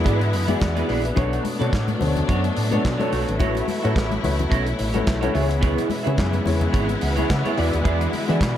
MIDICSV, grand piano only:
0, 0, Header, 1, 2, 480
1, 0, Start_track
1, 0, Tempo, 556586
1, 1010, Time_signature, 4, 2, 24, 8
1, 7395, End_track
2, 0, Start_track
2, 0, Title_t, "Grand piano"
2, 0, Program_c, 0, 0
2, 0, Control_c, 0, 64, 127
2, 0, Note_on_c, 0, 52, 74
2, 0, Note_on_c, 0, 59, 76
2, 0, Note_on_c, 0, 66, 79
2, 0, Note_on_c, 0, 68, 78
2, 0, Note_on_c, 0, 74, 81
2, 192, Note_off_c, 0, 52, 0
2, 196, Note_off_c, 0, 59, 0
2, 197, Note_off_c, 0, 68, 0
2, 198, Note_off_c, 0, 66, 0
2, 198, Note_off_c, 0, 74, 0
2, 418, Note_on_c, 0, 52, 89
2, 419, Note_on_c, 0, 59, 80
2, 423, Note_on_c, 0, 66, 74
2, 426, Note_on_c, 0, 68, 85
2, 431, Note_on_c, 0, 74, 99
2, 529, Note_off_c, 0, 66, 0
2, 531, Note_off_c, 0, 68, 0
2, 533, Note_off_c, 0, 74, 0
2, 560, Note_off_c, 0, 52, 0
2, 560, Note_off_c, 0, 59, 0
2, 666, Note_on_c, 0, 71, 71
2, 670, Note_on_c, 0, 66, 58
2, 765, Note_off_c, 0, 71, 0
2, 768, Note_off_c, 0, 66, 0
2, 769, Note_on_c, 0, 74, 67
2, 772, Note_on_c, 0, 68, 56
2, 898, Note_off_c, 0, 74, 0
2, 899, Note_off_c, 0, 68, 0
2, 907, Note_on_c, 0, 76, 66
2, 912, Note_on_c, 0, 71, 54
2, 1000, Note_on_c, 0, 47, 85
2, 1004, Note_on_c, 0, 59, 81
2, 1005, Note_on_c, 0, 62, 73
2, 1012, Note_on_c, 0, 69, 69
2, 1013, Note_on_c, 0, 73, 98
2, 1019, Control_c, 0, 64, 0
2, 1134, Note_off_c, 0, 76, 0
2, 1137, Note_off_c, 0, 71, 0
2, 1196, Control_c, 0, 64, 127
2, 1231, Note_off_c, 0, 47, 0
2, 1233, Note_off_c, 0, 59, 0
2, 1234, Note_off_c, 0, 62, 0
2, 1237, Note_off_c, 0, 69, 0
2, 1238, Note_off_c, 0, 73, 0
2, 1372, Note_on_c, 0, 47, 81
2, 1376, Note_on_c, 0, 59, 81
2, 1380, Note_on_c, 0, 62, 73
2, 1381, Note_on_c, 0, 69, 78
2, 1385, Note_on_c, 0, 73, 97
2, 1601, Note_off_c, 0, 47, 0
2, 1603, Note_off_c, 0, 59, 0
2, 1605, Note_off_c, 0, 62, 0
2, 1605, Note_off_c, 0, 69, 0
2, 1608, Note_off_c, 0, 73, 0
2, 1719, Note_on_c, 0, 47, 82
2, 1724, Note_on_c, 0, 59, 74
2, 1726, Note_on_c, 0, 62, 75
2, 1732, Note_on_c, 0, 69, 73
2, 1733, Note_on_c, 0, 72, 81
2, 1788, Note_on_c, 0, 73, 94
2, 1795, Note_off_c, 0, 72, 0
2, 2111, Note_off_c, 0, 47, 0
2, 2114, Note_off_c, 0, 59, 0
2, 2115, Note_off_c, 0, 62, 0
2, 2118, Note_off_c, 0, 69, 0
2, 2146, Note_off_c, 0, 73, 0
2, 2337, Note_on_c, 0, 47, 85
2, 2339, Note_on_c, 0, 59, 81
2, 2343, Note_on_c, 0, 62, 85
2, 2345, Note_on_c, 0, 69, 84
2, 2348, Note_on_c, 0, 74, 85
2, 2480, Note_off_c, 0, 47, 0
2, 2481, Note_off_c, 0, 59, 0
2, 2483, Note_off_c, 0, 62, 0
2, 2484, Note_off_c, 0, 69, 0
2, 2485, Note_off_c, 0, 74, 0
2, 2580, Note_on_c, 0, 47, 84
2, 2584, Note_on_c, 0, 59, 83
2, 2587, Note_on_c, 0, 69, 91
2, 2588, Note_on_c, 0, 62, 79
2, 2592, Note_on_c, 0, 73, 99
2, 2805, Note_off_c, 0, 47, 0
2, 2807, Note_off_c, 0, 59, 0
2, 2809, Note_off_c, 0, 62, 0
2, 2809, Note_off_c, 0, 69, 0
2, 2812, Note_off_c, 0, 73, 0
2, 2926, Note_on_c, 0, 57, 86
2, 2927, Note_on_c, 0, 64, 75
2, 2932, Note_on_c, 0, 66, 77
2, 2935, Note_on_c, 0, 71, 85
2, 2939, Note_on_c, 0, 73, 91
2, 2943, Control_c, 0, 64, 0
2, 3076, Control_c, 0, 64, 127
2, 3155, Note_off_c, 0, 57, 0
2, 3156, Note_off_c, 0, 64, 0
2, 3158, Note_off_c, 0, 66, 0
2, 3160, Note_off_c, 0, 71, 0
2, 3162, Note_off_c, 0, 73, 0
2, 3305, Note_on_c, 0, 57, 91
2, 3305, Note_on_c, 0, 64, 82
2, 3307, Note_on_c, 0, 66, 84
2, 3313, Note_on_c, 0, 71, 86
2, 3316, Note_on_c, 0, 73, 101
2, 3528, Note_off_c, 0, 57, 0
2, 3528, Note_off_c, 0, 64, 0
2, 3529, Note_off_c, 0, 66, 0
2, 3532, Note_off_c, 0, 71, 0
2, 3534, Note_off_c, 0, 73, 0
2, 3650, Note_on_c, 0, 57, 91
2, 3654, Note_on_c, 0, 64, 78
2, 3656, Note_on_c, 0, 66, 79
2, 3659, Note_on_c, 0, 71, 84
2, 3661, Note_on_c, 0, 73, 91
2, 4038, Note_off_c, 0, 57, 0
2, 4040, Note_off_c, 0, 64, 0
2, 4041, Note_off_c, 0, 66, 0
2, 4042, Note_off_c, 0, 71, 0
2, 4043, Note_off_c, 0, 73, 0
2, 4130, Note_on_c, 0, 73, 75
2, 4258, Note_off_c, 0, 73, 0
2, 4259, Note_on_c, 0, 57, 85
2, 4261, Note_on_c, 0, 64, 83
2, 4267, Note_on_c, 0, 66, 75
2, 4269, Note_on_c, 0, 71, 82
2, 4271, Note_on_c, 0, 73, 96
2, 4368, Note_on_c, 0, 76, 69
2, 4401, Note_off_c, 0, 57, 0
2, 4402, Note_off_c, 0, 64, 0
2, 4406, Note_off_c, 0, 66, 0
2, 4406, Note_off_c, 0, 71, 0
2, 4408, Note_off_c, 0, 73, 0
2, 4501, Note_on_c, 0, 57, 88
2, 4506, Note_on_c, 0, 66, 80
2, 4507, Note_on_c, 0, 64, 88
2, 4510, Note_on_c, 0, 71, 83
2, 4513, Note_on_c, 0, 73, 110
2, 4593, Note_off_c, 0, 76, 0
2, 4601, Note_off_c, 0, 64, 0
2, 4607, Note_off_c, 0, 71, 0
2, 4609, Note_off_c, 0, 57, 0
2, 4609, Note_on_c, 0, 49, 81
2, 4612, Note_off_c, 0, 66, 0
2, 4613, Note_on_c, 0, 59, 83
2, 4614, Note_on_c, 0, 64, 77
2, 4615, Note_on_c, 0, 76, 75
2, 4616, Note_off_c, 0, 73, 0
2, 4620, Note_on_c, 0, 68, 82
2, 4620, Note_on_c, 0, 71, 73
2, 4624, Control_c, 0, 64, 0
2, 4678, Note_on_c, 0, 73, 103
2, 4679, Note_off_c, 0, 71, 0
2, 4767, Control_c, 0, 64, 127
2, 4837, Note_off_c, 0, 76, 0
2, 5091, Note_off_c, 0, 49, 0
2, 5093, Note_off_c, 0, 59, 0
2, 5093, Note_off_c, 0, 64, 0
2, 5096, Note_off_c, 0, 68, 0
2, 5126, Note_off_c, 0, 73, 0
2, 5227, Note_on_c, 0, 49, 87
2, 5230, Note_on_c, 0, 59, 82
2, 5233, Note_on_c, 0, 64, 83
2, 5236, Note_on_c, 0, 68, 89
2, 5239, Note_on_c, 0, 73, 102
2, 5449, Note_off_c, 0, 49, 0
2, 5451, Note_off_c, 0, 59, 0
2, 5453, Note_off_c, 0, 64, 0
2, 5454, Note_off_c, 0, 68, 0
2, 5456, Note_off_c, 0, 73, 0
2, 5570, Note_on_c, 0, 49, 77
2, 5575, Note_on_c, 0, 59, 83
2, 5575, Note_on_c, 0, 64, 71
2, 5579, Note_on_c, 0, 68, 75
2, 5581, Note_on_c, 0, 73, 96
2, 5958, Note_off_c, 0, 49, 0
2, 5960, Note_off_c, 0, 59, 0
2, 5960, Note_off_c, 0, 64, 0
2, 5962, Note_off_c, 0, 68, 0
2, 5963, Note_off_c, 0, 73, 0
2, 6061, Note_on_c, 0, 78, 65
2, 6069, Note_on_c, 0, 73, 53
2, 6185, Note_off_c, 0, 78, 0
2, 6187, Note_off_c, 0, 73, 0
2, 6193, Note_on_c, 0, 80, 70
2, 6200, Note_on_c, 0, 73, 69
2, 6290, Note_off_c, 0, 80, 0
2, 6292, Note_off_c, 0, 73, 0
2, 6299, Note_on_c, 0, 78, 75
2, 6305, Note_on_c, 0, 73, 63
2, 6424, Note_off_c, 0, 78, 0
2, 6427, Note_off_c, 0, 73, 0
2, 6433, Note_on_c, 0, 76, 74
2, 6437, Note_on_c, 0, 71, 61
2, 6533, Note_on_c, 0, 52, 96
2, 6533, Note_on_c, 0, 66, 85
2, 6534, Note_on_c, 0, 59, 74
2, 6539, Note_on_c, 0, 68, 75
2, 6540, Note_on_c, 0, 74, 92
2, 6543, Control_c, 0, 64, 0
2, 6658, Note_off_c, 0, 76, 0
2, 6660, Note_off_c, 0, 71, 0
2, 6678, Control_c, 0, 64, 127
2, 7012, Note_off_c, 0, 52, 0
2, 7013, Note_off_c, 0, 59, 0
2, 7013, Note_off_c, 0, 66, 0
2, 7016, Note_off_c, 0, 68, 0
2, 7016, Note_off_c, 0, 74, 0
2, 7139, Note_on_c, 0, 52, 83
2, 7142, Note_on_c, 0, 59, 77
2, 7144, Note_on_c, 0, 66, 79
2, 7150, Note_on_c, 0, 68, 81
2, 7151, Note_on_c, 0, 74, 95
2, 7365, Note_off_c, 0, 52, 0
2, 7367, Note_off_c, 0, 59, 0
2, 7368, Note_off_c, 0, 66, 0
2, 7371, Note_off_c, 0, 68, 0
2, 7371, Note_off_c, 0, 74, 0
2, 7395, End_track
0, 0, End_of_file